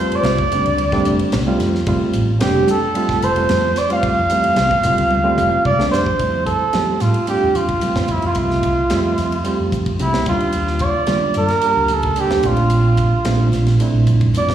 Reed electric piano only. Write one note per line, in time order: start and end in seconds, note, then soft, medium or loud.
0.00 0.41 G3 medium
0.00 0.41 A3 medium
0.00 0.42 C4 medium
0.00 0.42 F4 medium
0.52 0.84 G3 medium
0.52 0.85 A3 medium
0.52 0.85 C4 medium
0.52 0.86 D4 medium
0.93 1.36 G3 loud
0.93 1.36 A3 medium
0.93 1.36 C4 medium
0.93 1.36 D4 loud
1.47 1.79 G3 medium
1.47 1.79 A3 medium
1.47 1.79 C4 medium
1.47 1.80 F4 loud
1.87 2.31 G3 medium
1.87 2.31 A3 medium
1.87 2.31 C4 medium
1.87 2.32 F4 loud
2.39 2.84 G3 medium
2.39 2.84 A3 medium
2.39 2.85 C4 medium
2.39 2.85 D4 medium
2.94 3.27 G3 medium
2.94 3.28 A3 medium
2.94 3.28 C4 medium
2.94 3.29 F4 medium
3.35 3.79 G3 medium
3.35 3.79 A3 medium
3.35 3.80 C4 medium
3.35 3.80 F4 medium
3.89 4.22 G3 medium
3.89 4.22 A3 medium
3.89 4.23 C4 medium
3.89 4.23 F4 medium
4.30 4.75 E3 medium
4.30 4.74 G3 medium
4.30 4.74 A3 medium
4.30 4.75 C4 medium
4.83 5.17 G3 medium
4.83 5.17 A3 medium
4.83 5.18 C4 medium
4.83 5.18 F4 medium
5.24 5.68 G3 medium
5.24 5.68 A3 medium
5.24 5.68 C4 medium
5.24 5.69 F4 loud
5.78 6.11 G3 medium
5.78 6.12 A3 medium
5.78 6.12 C4 medium
5.78 6.12 D4 medium
6.18 6.63 G3 medium
6.18 6.63 A3 medium
6.18 6.63 C4 medium
6.18 6.64 E4 medium
6.73 7.18 G3 medium
6.73 7.18 A3 medium
6.73 7.18 C4 medium
6.73 7.19 G4 medium
7.27 7.72 G3 medium
7.27 7.72 A3 medium
7.27 7.72 C4 medium
7.27 7.73 D4 medium
7.81 8.26 G3 medium
7.81 8.26 A3 medium
7.81 8.27 C4 medium
7.81 8.27 F4 medium
8.36 8.81 G3 medium
8.36 8.81 A3 medium
8.36 8.81 C4 medium
8.36 8.82 E5 medium
8.92 9.36 G3 medium
8.92 9.36 A3 medium
8.92 9.36 C4 medium
8.92 9.36 E5 medium
9.44 9.89 G3 medium
9.44 9.89 A3 medium
9.44 9.90 C4 medium
9.44 9.90 G4 medium
9.99 10.26 G3 medium
9.99 10.27 A3 medium
9.99 10.27 C4 medium
9.99 10.27 G4 medium
10.27 10.93 G3 medium
10.27 10.94 A#3 medium
10.27 10.95 D4 medium
10.27 10.95 F4 medium
11.08 11.53 G3 medium
11.08 11.53 A#3 medium
11.08 11.53 D4 medium
11.08 11.54 F4 medium
11.63 12.07 G3 medium
11.63 12.07 A#3 medium
11.63 12.08 D4 medium
11.63 12.08 G4 medium
12.17 12.44 G3 medium
12.17 12.45 A#3 medium
12.17 12.44 D4 medium
12.17 12.45 G4 medium
12.43 13.10 A3 medium
12.43 13.11 C4 medium
12.43 13.11 D4 medium
12.43 13.11 F4 medium
13.25 13.70 A3 medium
13.25 13.70 C4 medium
13.25 13.70 D4 medium
13.25 13.71 F4 medium
13.80 14.25 A3 medium
13.80 14.25 C4 medium
13.80 14.25 D4 medium
13.80 14.26 E4 medium
14.36 14.55 A3 medium
14.36 14.55 C4 medium
14.36 14.55 D4 medium
14.36 14.55 F4 medium